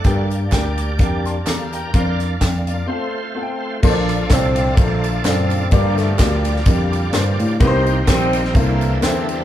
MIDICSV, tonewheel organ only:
0, 0, Header, 1, 2, 480
1, 0, Start_track
1, 0, Key_signature, -2, "major"
1, 0, Tempo, 472441
1, 48, Time_signature, 4, 2, 24, 8
1, 9593, End_track
2, 0, Start_track
2, 0, Title_t, "Tonewheel organ"
2, 0, Program_c, 0, 16
2, 0, Note_on_c, 0, 69, 59
2, 0, Note_on_c, 0, 78, 69
2, 46, Note_on_c, 0, 62, 64
2, 50, Note_on_c, 0, 72, 65
2, 52, Note_on_c, 0, 67, 64
2, 53, Note_on_c, 0, 58, 71
2, 107, Note_on_c, 0, 74, 81
2, 112, Note_off_c, 0, 72, 0
2, 290, Note_off_c, 0, 78, 0
2, 297, Note_off_c, 0, 69, 0
2, 1487, Note_on_c, 0, 77, 70
2, 1493, Note_off_c, 0, 74, 0
2, 1495, Note_on_c, 0, 69, 57
2, 1741, Note_off_c, 0, 77, 0
2, 1745, Note_off_c, 0, 69, 0
2, 1753, Note_on_c, 0, 79, 70
2, 1765, Note_on_c, 0, 70, 56
2, 1933, Note_off_c, 0, 62, 0
2, 1936, Note_off_c, 0, 58, 0
2, 1936, Note_off_c, 0, 67, 0
2, 1972, Note_on_c, 0, 62, 65
2, 1973, Note_on_c, 0, 74, 81
2, 1976, Note_on_c, 0, 58, 70
2, 1977, Note_on_c, 0, 65, 62
2, 2211, Note_off_c, 0, 79, 0
2, 2218, Note_off_c, 0, 70, 0
2, 2908, Note_off_c, 0, 65, 0
2, 2914, Note_off_c, 0, 62, 0
2, 2915, Note_off_c, 0, 74, 0
2, 2916, Note_off_c, 0, 58, 0
2, 2920, Note_on_c, 0, 60, 67
2, 2920, Note_on_c, 0, 65, 64
2, 2922, Note_on_c, 0, 72, 79
2, 2925, Note_on_c, 0, 57, 70
2, 3868, Note_off_c, 0, 60, 0
2, 3868, Note_off_c, 0, 65, 0
2, 3869, Note_off_c, 0, 72, 0
2, 3870, Note_off_c, 0, 57, 0
2, 3887, Note_on_c, 0, 62, 71
2, 3889, Note_on_c, 0, 65, 68
2, 3889, Note_on_c, 0, 73, 70
2, 3892, Note_on_c, 0, 53, 77
2, 3892, Note_on_c, 0, 69, 73
2, 3944, Note_on_c, 0, 74, 88
2, 3955, Note_off_c, 0, 73, 0
2, 5770, Note_off_c, 0, 62, 0
2, 5771, Note_off_c, 0, 65, 0
2, 5772, Note_off_c, 0, 53, 0
2, 5772, Note_off_c, 0, 69, 0
2, 5799, Note_off_c, 0, 74, 0
2, 5810, Note_on_c, 0, 62, 55
2, 5810, Note_on_c, 0, 67, 59
2, 5811, Note_on_c, 0, 58, 63
2, 5811, Note_on_c, 0, 74, 72
2, 5813, Note_on_c, 0, 65, 60
2, 7689, Note_off_c, 0, 58, 0
2, 7689, Note_off_c, 0, 62, 0
2, 7689, Note_off_c, 0, 67, 0
2, 7690, Note_off_c, 0, 74, 0
2, 7691, Note_off_c, 0, 65, 0
2, 7730, Note_on_c, 0, 67, 74
2, 7733, Note_on_c, 0, 63, 69
2, 7734, Note_on_c, 0, 58, 80
2, 7737, Note_on_c, 0, 60, 71
2, 7739, Note_on_c, 0, 72, 86
2, 8663, Note_off_c, 0, 72, 0
2, 8666, Note_off_c, 0, 58, 0
2, 8669, Note_off_c, 0, 67, 0
2, 8671, Note_off_c, 0, 63, 0
2, 8672, Note_off_c, 0, 60, 0
2, 8674, Note_on_c, 0, 62, 61
2, 8676, Note_on_c, 0, 72, 69
2, 8678, Note_on_c, 0, 58, 68
2, 8680, Note_on_c, 0, 69, 62
2, 8682, Note_on_c, 0, 64, 61
2, 9593, Note_off_c, 0, 58, 0
2, 9593, Note_off_c, 0, 62, 0
2, 9593, Note_off_c, 0, 64, 0
2, 9593, Note_off_c, 0, 69, 0
2, 9593, Note_off_c, 0, 72, 0
2, 9593, End_track
0, 0, End_of_file